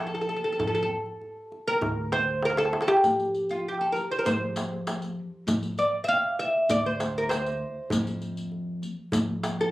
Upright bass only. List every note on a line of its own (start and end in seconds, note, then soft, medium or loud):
0.00 0.30 F2 medium
0.60 0.83 F2 medium
1.81 2.74 D2 medium
3.04 3.96 F2 medium
4.25 5.18 F2 medium
5.47 5.70 F2 medium
6.69 7.62 D2 medium
7.91 8.84 F2 medium
9.13 9.71 F2 medium